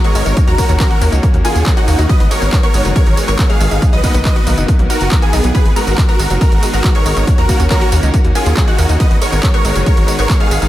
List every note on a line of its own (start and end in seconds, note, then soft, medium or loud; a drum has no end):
0.00 impact medium
0.04 0.12 G#3 loud
0.04 0.35 A#4 medium
0.04 0.35 C#5 loud
0.04 0.35 C#6 medium
0.04 closed hi-hat medium
0.15 0.23 G#1 medium
0.15 0.25 G#3 loud
0.15 open hi-hat medium
0.15 tambourine medium
0.26 0.34 G#1 medium
0.26 0.34 D#3 medium
0.26 0.34 G#3 medium
0.26 0.34 B3 medium
0.26 0.33 D#4 medium
0.26 0.34 F#4 medium
0.26 closed hi-hat medium
0.26 tambourine soft
0.37 0.44 D#3 medium
0.37 0.44 A#3 medium
0.37 0.44 C#4 medium
0.37 0.44 F#4 medium
0.37 kick loud
0.37 closed hi-hat medium
0.37 tambourine soft
0.47 0.55 D#2 medium
0.47 0.55 D#3 medium
0.47 0.55 F#3 medium
0.47 0.55 A#3 medium
0.47 0.55 C#4 medium
0.47 0.71 F#4 medium
0.47 0.55 F#4 medium
0.47 0.71 A#4 loud
0.47 0.71 A#5 loud
0.47 closed hi-hat medium
0.58 0.74 D#3 medium
0.58 0.66 A#3 medium
0.58 0.74 A#3 medium
0.58 0.74 C#4 medium
0.58 0.74 F#4 medium
0.58 kick medium
0.58 open hi-hat loud
0.58 tambourine medium
0.69 0.77 D#2 medium
0.69 0.76 C#4 medium
0.69 closed hi-hat medium
0.69 tambourine soft
0.80 0.95 D#3 medium
0.80 0.95 A#3 medium
0.80 0.87 C#4 medium
0.80 0.95 C#4 medium
0.80 1.03 F#4 medium
0.80 0.95 F#4 medium
0.80 1.03 A#4 loud
0.80 1.03 A#5 loud
0.80 kick loud
0.80 clap loud
0.80 closed hi-hat medium
0.80 tambourine soft
0.91 1.01 F#4 loud
0.91 closed hi-hat medium
1.01 1.09 D#2 medium
1.01 1.17 D#3 loud
1.01 1.12 A#3 loud
1.01 1.17 A#3 medium
1.01 1.17 C#4 medium
1.01 1.17 F#4 medium
1.01 open hi-hat medium
1.01 tambourine medium
1.12 1.20 C#2 medium
1.12 1.19 D#4 medium
1.12 closed hi-hat medium
1.12 tambourine soft
1.23 1.31 D#3 medium
1.23 1.30 A#3 medium
1.23 1.31 A#3 medium
1.23 1.31 C#4 medium
1.23 1.31 F#4 medium
1.23 kick loud
1.23 closed hi-hat medium
1.23 tambourine soft
1.34 1.41 D#2 medium
1.34 1.42 D#3 medium
1.34 1.41 F#3 medium
1.34 1.42 A#3 medium
1.34 1.42 C#4 medium
1.34 1.42 F#4 medium
1.34 closed hi-hat medium
1.44 1.60 D#3 medium
1.44 1.52 A#3 medium
1.44 1.60 A#3 medium
1.44 1.60 C#4 medium
1.44 1.68 F4 medium
1.44 1.60 F#4 medium
1.44 1.68 G#4 loud
1.44 1.68 G#5 loud
1.44 open hi-hat loud
1.44 tambourine medium
1.55 1.63 D#2 medium
1.55 closed hi-hat medium
1.55 tambourine soft
1.66 1.81 D#3 medium
1.66 1.81 A#3 medium
1.66 1.73 C#4 medium
1.66 1.81 C#4 medium
1.66 1.81 F#4 medium
1.66 kick loud
1.66 clap loud
1.66 closed hi-hat medium
1.66 tambourine soft
1.77 2.00 D#4 medium
1.77 2.00 F#4 loud
1.77 1.87 F#4 loud
1.77 2.00 F#5 loud
1.77 closed hi-hat medium
1.88 1.95 D#2 loud
1.88 1.98 A#3 loud
1.88 open hi-hat loud
1.88 tambourine medium
1.99 2.06 D#2 medium
1.99 2.06 D#3 medium
1.99 2.06 A#3 medium
1.99 2.06 C#4 medium
1.99 2.06 D#4 medium
1.99 2.06 F#4 medium
1.99 closed hi-hat medium
1.99 tambourine soft
2.09 2.17 D#3 medium
2.09 2.14 F#3 medium
2.09 2.17 G#3 medium
2.09 2.17 B3 medium
2.09 2.17 F#4 medium
2.09 2.25 B4 medium
2.09 2.25 D#5 loud
2.09 2.25 D#6 loud
2.09 kick loud
2.09 closed hi-hat medium
2.09 tambourine soft
2.20 2.28 G#1 medium
2.20 2.28 D#3 medium
2.20 2.28 G#3 medium
2.20 2.28 B3 medium
2.20 2.27 B3 medium
2.20 2.28 F#4 medium
2.20 closed hi-hat medium
2.31 2.46 D#3 medium
2.31 2.38 G#3 medium
2.31 2.46 G#3 medium
2.31 2.46 B3 medium
2.31 2.46 F#4 medium
2.31 2.54 A#4 medium
2.31 2.54 C#5 loud
2.31 2.54 C#6 medium
2.31 open hi-hat loud
2.31 tambourine medium
2.42 2.49 G#1 medium
2.42 2.51 B3 medium
2.42 closed hi-hat medium
2.42 tambourine soft
2.52 2.68 D#3 medium
2.52 2.68 G#3 medium
2.52 2.68 B3 medium
2.52 2.60 B3 medium
2.52 2.68 F#4 medium
2.52 kick loud
2.52 clap loud
2.52 closed hi-hat medium
2.52 tambourine soft
2.63 2.71 B3 loud
2.63 2.87 A#4 medium
2.63 2.87 C#5 loud
2.63 2.87 C#6 loud
2.63 closed hi-hat medium
2.74 2.82 G#1 medium
2.74 2.89 D#3 medium
2.74 2.78 G#3 medium
2.74 2.89 G#3 medium
2.74 2.89 B3 medium
2.74 2.89 F#4 medium
2.74 open hi-hat loud
2.74 tambourine medium
2.85 2.93 F#1 medium
2.85 2.95 F#3 medium
2.85 closed hi-hat medium
2.85 tambourine soft
2.96 3.03 D#3 medium
2.96 3.03 G#3 medium
2.96 3.03 B3 medium
2.96 3.03 F#4 medium
2.96 3.19 A#4 medium
2.96 3.19 C#5 loud
2.96 3.19 C#6 loud
2.96 kick loud
2.96 closed hi-hat medium
2.96 tambourine soft
3.06 3.14 G#1 medium
3.06 3.14 D#3 medium
3.06 3.14 F#3 medium
3.06 3.14 G#3 medium
3.06 3.14 B3 medium
3.06 3.14 F#4 medium
3.06 closed hi-hat medium
3.17 3.32 D#3 medium
3.17 3.25 G#3 medium
3.17 3.32 G#3 medium
3.17 3.32 B3 medium
3.17 3.32 F#4 medium
3.17 open hi-hat loud
3.17 tambourine medium
3.28 3.36 G#1 medium
3.28 3.38 B3 medium
3.28 3.44 A#4 medium
3.28 3.44 C#5 medium
3.28 3.44 C#6 medium
3.28 closed hi-hat medium
3.28 tambourine soft
3.39 3.54 D#3 loud
3.39 3.54 G#3 medium
3.39 3.46 B3 medium
3.39 3.54 B3 medium
3.39 3.54 F#4 medium
3.39 kick loud
3.39 clap loud
3.39 closed hi-hat medium
3.39 tambourine soft
3.49 3.57 G#3 loud
3.49 3.81 G#4 medium
3.49 3.81 F5 loud
3.49 3.81 F6 loud
3.49 closed hi-hat medium
3.60 3.68 G#1 loud
3.60 3.71 G#3 loud
3.60 open hi-hat loud
3.60 tambourine medium
3.71 3.79 G#1 medium
3.71 3.79 D#3 medium
3.71 3.79 G#3 medium
3.71 3.79 B3 medium
3.71 3.79 D#4 medium
3.71 3.79 F#4 medium
3.71 closed hi-hat medium
3.71 tambourine soft
3.82 3.90 D#3 medium
3.82 3.89 A#3 medium
3.82 3.90 A#3 medium
3.82 3.90 B3 medium
3.82 3.90 F#4 medium
3.82 kick loud
3.82 closed hi-hat medium
3.82 tambourine soft
3.93 4.00 B1 medium
3.93 4.00 D#3 medium
3.93 4.00 F#3 medium
3.93 4.00 A#3 medium
3.93 4.00 B3 medium
3.93 4.00 F#4 medium
3.93 4.16 B4 medium
3.93 4.16 D#5 loud
3.93 4.16 D#6 loud
3.93 closed hi-hat soft
4.04 4.19 D#3 medium
4.04 4.19 A#3 medium
4.04 4.11 A#3 medium
4.04 4.19 B3 medium
4.04 4.19 F#4 medium
4.04 kick medium
4.04 open hi-hat loud
4.04 tambourine medium
4.14 4.22 B1 medium
4.14 4.22 B3 medium
4.14 closed hi-hat soft
4.14 tambourine soft
4.25 4.40 D#3 medium
4.25 4.40 A#3 medium
4.25 4.32 B3 medium
4.25 4.40 B3 medium
4.25 4.40 F#4 medium
4.25 4.48 B4 medium
4.25 4.48 D#5 loud
4.25 4.48 D#6 medium
4.25 kick loud
4.25 clap loud
4.25 closed hi-hat medium
4.25 tambourine soft
4.36 4.46 F#4 loud
4.36 closed hi-hat soft
4.47 4.54 B1 loud
4.47 4.62 D#3 medium
4.47 4.62 A#3 medium
4.47 4.57 A#3 loud
4.47 4.62 B3 medium
4.47 4.62 F#4 medium
4.47 open hi-hat loud
4.47 tambourine medium
4.58 4.65 F#1 medium
4.58 4.65 D#4 medium
4.58 closed hi-hat medium
4.58 tambourine soft
4.68 4.76 D#3 medium
4.68 4.76 A#3 medium
4.68 4.76 B3 medium
4.68 4.76 F#4 medium
4.68 kick loud
4.68 closed hi-hat medium
4.68 tambourine soft
4.79 4.87 B1 medium
4.79 4.87 D#3 medium
4.79 4.86 F#3 medium
4.79 4.87 A#3 medium
4.79 4.87 B3 medium
4.79 4.87 F#4 medium
4.79 closed hi-hat soft
4.90 5.05 D#3 medium
4.90 5.05 A#3 loud
4.90 5.05 B3 medium
4.90 5.05 F#4 medium
4.90 5.13 F#4 medium
4.90 4.97 A#4 medium
4.90 5.13 A#4 loud
4.90 5.13 A#5 medium
4.90 open hi-hat loud
4.90 tambourine medium
5.01 5.08 F#1 medium
5.01 closed hi-hat medium
5.01 tambourine soft
5.11 5.27 D#3 medium
5.11 5.27 A#3 medium
5.11 5.27 B3 medium
5.11 5.27 F#4 medium
5.11 5.19 A#4 medium
5.11 kick loud
5.11 clap loud
5.11 closed hi-hat medium
5.11 tambourine soft
5.22 5.30 A#3 medium
5.22 5.46 B3 medium
5.22 5.46 G#4 loud
5.22 5.46 G#5 medium
5.22 closed hi-hat medium
5.33 5.41 B1 medium
5.33 5.37 D#4 loud
5.33 open hi-hat medium
5.33 tambourine medium
5.44 5.52 B1 medium
5.44 5.51 D#3 medium
5.44 5.48 F#3 medium
5.44 5.51 A#3 medium
5.44 5.51 B3 medium
5.44 5.51 F#4 medium
5.44 closed hi-hat medium
5.44 tambourine soft
5.55 5.62 D#3 medium
5.55 5.59 F#3 medium
5.55 5.62 G#3 medium
5.55 5.62 B3 medium
5.55 5.62 F#4 medium
5.55 5.70 G#4 medium
5.55 5.70 B4 loud
5.55 5.70 B5 loud
5.55 kick loud
5.55 closed hi-hat medium
5.55 tambourine soft
5.65 5.73 G#1 medium
5.65 5.73 D#3 medium
5.65 5.73 G#3 medium
5.65 5.73 B3 medium
5.65 5.73 F#4 medium
5.65 closed hi-hat soft
5.76 5.91 D#3 medium
5.76 5.91 G#3 medium
5.76 5.84 G#3 medium
5.76 5.91 B3 medium
5.76 5.99 F#4 medium
5.76 5.91 F#4 medium
5.76 5.99 A#4 loud
5.76 6.00 A#5 medium
5.76 open hi-hat loud
5.76 tambourine medium
5.87 5.95 G#1 medium
5.87 5.97 B3 medium
5.87 closed hi-hat medium
5.87 tambourine soft
5.98 6.13 D#3 medium
5.98 6.13 G#3 medium
5.98 6.05 B3 medium
5.98 6.13 B3 medium
5.98 6.13 F#4 medium
5.98 kick loud
5.98 clap loud
5.98 closed hi-hat medium
5.98 tambourine soft
6.09 6.16 B3 loud
6.09 6.32 F#4 medium
6.09 6.32 A#4 medium
6.09 6.32 A#5 medium
6.09 closed hi-hat medium
6.19 6.27 G#1 loud
6.19 6.35 D#3 medium
6.19 6.24 G#3 medium
6.19 6.35 G#3 loud
6.19 6.35 B3 medium
6.19 6.35 F#4 medium
6.19 open hi-hat medium
6.19 tambourine medium
6.30 6.38 F#1 medium
6.30 6.41 F#3 medium
6.30 closed hi-hat medium
6.30 tambourine soft
6.41 6.48 D#3 medium
6.41 6.48 G#3 medium
6.41 6.48 B3 medium
6.41 6.64 F#4 medium
6.41 6.49 F#4 medium
6.41 6.64 A#4 loud
6.41 6.64 A#5 medium
6.41 kick loud
6.41 closed hi-hat medium
6.41 tambourine soft
6.51 6.59 G#1 medium
6.51 6.59 D#3 medium
6.51 6.59 F#3 medium
6.51 6.59 G#3 medium
6.51 6.59 B3 medium
6.51 6.59 F#4 medium
6.51 closed hi-hat medium
6.63 6.78 D#3 medium
6.63 6.70 G#3 medium
6.63 6.78 G#3 medium
6.63 6.78 B3 medium
6.63 6.78 F#4 medium
6.63 open hi-hat loud
6.63 tambourine medium
6.73 6.81 G#1 medium
6.73 6.83 B3 medium
6.73 6.89 F#4 medium
6.73 6.89 A#4 medium
6.73 6.89 A#5 medium
6.73 closed hi-hat medium
6.73 tambourine soft
6.84 6.99 D#3 medium
6.84 6.99 G#3 medium
6.84 6.99 B3 medium
6.84 6.92 B3 medium
6.84 6.99 F#4 loud
6.84 kick loud
6.84 clap loud
6.84 closed hi-hat medium
6.84 tambourine soft
6.95 7.02 G#3 loud
6.95 7.26 A#4 medium
6.95 7.26 C#5 loud
6.95 7.26 C#6 medium
6.95 closed hi-hat medium
7.06 7.13 G#1 loud
7.06 7.16 G#3 loud
7.06 open hi-hat medium
7.06 tambourine medium
7.16 7.24 G#1 medium
7.16 7.24 D#3 medium
7.16 7.24 G#3 medium
7.16 7.24 B3 medium
7.16 7.24 D#4 medium
7.16 7.24 F#4 medium
7.16 closed hi-hat medium
7.16 tambourine soft
7.27 7.35 D#3 medium
7.27 7.35 A#3 medium
7.27 7.35 C#4 medium
7.27 7.35 F#4 medium
7.27 kick loud
7.27 closed hi-hat medium
7.27 tambourine soft
7.38 7.46 D#2 medium
7.38 7.46 D#3 medium
7.38 7.45 F#3 medium
7.38 7.46 A#3 medium
7.38 7.46 C#4 medium
7.38 7.46 F#4 medium
7.38 7.61 F#4 medium
7.38 7.61 A#4 loud
7.38 7.61 A#5 loud
7.38 closed hi-hat medium
7.49 7.64 D#3 medium
7.49 7.64 A#3 medium
7.49 7.56 A#3 medium
7.49 7.64 C#4 medium
7.49 7.64 F#4 medium
7.49 kick medium
7.49 open hi-hat loud
7.49 tambourine medium
7.60 7.67 D#2 medium
7.60 7.67 C#4 medium
7.60 closed hi-hat medium
7.60 tambourine soft
7.70 7.85 D#3 medium
7.70 7.85 A#3 medium
7.70 7.85 C#4 medium
7.70 7.78 C#4 medium
7.70 7.85 F#4 medium
7.70 7.94 F#4 medium
7.70 7.94 A#4 loud
7.70 7.94 A#5 medium
7.70 kick loud
7.70 clap loud
7.70 closed hi-hat medium
7.70 tambourine soft
7.81 7.92 F#4 loud
7.81 closed hi-hat medium
7.92 8.00 D#2 loud
7.92 8.07 D#3 medium
7.92 8.07 A#3 loud
7.92 8.02 A#3 loud
7.92 8.07 C#4 medium
7.92 8.07 F#4 medium
7.92 open hi-hat medium
7.92 tambourine medium
8.03 8.10 C#2 medium
8.03 8.10 D#4 medium
8.03 closed hi-hat medium
8.03 tambourine soft
8.13 8.21 D#3 medium
8.13 8.21 A#3 medium
8.13 8.21 C#4 medium
8.13 8.21 F#4 medium
8.13 kick loud
8.13 closed hi-hat medium
8.13 tambourine soft
8.24 8.32 D#2 medium
8.24 8.32 D#3 medium
8.24 8.32 F#3 medium
8.24 8.32 A#3 medium
8.24 8.32 C#4 medium
8.24 8.32 F#4 medium
8.24 closed hi-hat medium
8.35 8.50 D#3 medium
8.35 8.50 A#3 medium
8.35 8.43 A#3 medium
8.35 8.50 C#4 medium
8.35 8.58 F4 medium
8.35 8.50 F#4 medium
8.35 8.58 G#4 loud
8.35 8.59 G#5 loud
8.35 open hi-hat loud
8.35 tambourine medium
8.46 8.54 D#2 medium
8.46 closed hi-hat medium
8.46 tambourine soft
8.57 8.72 D#3 medium
8.57 8.72 A#3 medium
8.57 8.72 C#4 medium
8.57 8.64 C#4 medium
8.57 8.72 F#4 medium
8.57 kick loud
8.57 clap loud
8.57 closed hi-hat medium
8.57 tambourine soft
8.67 8.91 D#4 medium
8.67 8.91 F#4 loud
8.67 8.78 F#4 loud
8.67 8.91 F#5 medium
8.67 closed hi-hat medium
8.78 8.86 D#2 medium
8.78 8.89 A#3 loud
8.78 open hi-hat medium
8.78 tambourine medium
8.89 8.97 D#2 medium
8.89 8.97 D#3 medium
8.89 8.97 A#3 medium
8.89 8.97 C#4 medium
8.89 8.96 D#4 medium
8.89 8.97 F#4 medium
8.89 closed hi-hat medium
8.89 tambourine soft
9.00 9.07 D#3 medium
9.00 9.04 F#3 medium
9.00 9.07 G#3 medium
9.00 9.07 B3 medium
9.00 9.07 F#4 medium
9.00 9.15 B4 medium
9.00 9.15 D#5 loud
9.00 9.16 D#6 loud
9.00 kick loud
9.00 closed hi-hat medium
9.00 tambourine soft
9.11 9.18 G#1 medium
9.11 9.18 D#3 medium
9.11 9.18 G#3 medium
9.11 9.18 B3 medium
9.11 9.18 F#4 medium
9.11 closed hi-hat medium
9.21 9.37 D#3 medium
9.21 9.37 G#3 medium
9.21 9.29 G#3 medium
9.21 9.37 B3 medium
9.21 9.37 F#4 medium
9.21 9.45 A#4 medium
9.21 9.45 C#5 loud
9.21 9.45 C#6 medium
9.21 open hi-hat loud
9.21 tambourine medium
9.32 9.40 G#1 medium
9.32 9.42 B3 medium
9.32 closed hi-hat medium
9.32 tambourine soft
9.43 9.58 D#3 medium
9.43 9.58 G#3 medium
9.43 9.58 B3 medium
9.43 9.50 B3 medium
9.43 9.58 F#4 medium
9.43 kick loud
9.43 clap loud
9.43 closed hi-hat medium
9.43 tambourine soft
9.54 9.61 B3 loud
9.54 9.77 A#4 medium
9.54 9.77 C#5 loud
9.54 9.77 C#6 medium
9.54 closed hi-hat medium
9.65 9.72 G#1 medium
9.65 9.80 D#3 medium
9.65 9.80 G#3 medium
9.65 9.69 G#3 medium
9.65 9.80 B3 loud
9.65 9.80 F#4 medium
9.65 open hi-hat medium
9.65 tambourine medium
9.75 9.83 F#1 medium
9.75 9.86 F#3 medium
9.75 closed hi-hat medium
9.75 tambourine soft
9.86 9.94 D#3 medium
9.86 9.94 G#3 medium
9.86 9.94 B3 medium
9.86 9.94 F#4 medium
9.86 10.10 A#4 medium
9.86 10.10 C#5 loud
9.86 10.10 C#6 loud
9.86 kick loud
9.86 closed hi-hat medium
9.86 tambourine soft
9.97 10.05 G#1 medium
9.97 10.05 D#3 medium
9.97 10.04 F#3 medium
9.97 10.05 G#3 medium
9.97 10.05 B3 medium
9.97 10.05 F#4 medium
9.97 closed hi-hat medium
10.08 10.23 D#3 medium
10.08 10.15 G#3 medium
10.08 10.23 G#3 medium
10.08 10.23 B3 medium
10.08 10.23 F#4 medium
10.08 open hi-hat loud
10.08 tambourine medium
10.19 10.26 G#1 medium
10.19 10.28 B3 medium
10.19 10.34 A#4 medium
10.19 10.34 C#5 medium
10.19 10.34 C#6 medium
10.19 closed hi-hat medium
10.19 tambourine soft
10.29 10.45 D#3 medium
10.29 10.45 G#3 medium
10.29 10.45 B3 medium
10.29 10.37 B3 medium
10.29 10.45 F#4 medium
10.29 kick loud
10.29 clap loud
10.29 closed hi-hat medium
10.29 tambourine soft
10.40 10.48 G#3 loud
10.40 10.68 G#4 medium
10.40 10.68 F5 loud
10.40 10.68 F6 loud
10.40 closed hi-hat medium
10.51 10.59 G#1 loud
10.51 10.61 G#3 loud
10.51 open hi-hat medium
10.51 tambourine medium
10.62 10.68 G#1 medium
10.62 10.68 D#3 medium
10.62 10.68 G#3 medium
10.62 10.68 B3 medium
10.62 10.68 D#4 medium
10.62 10.68 F#4 medium
10.62 closed hi-hat medium
10.62 tambourine soft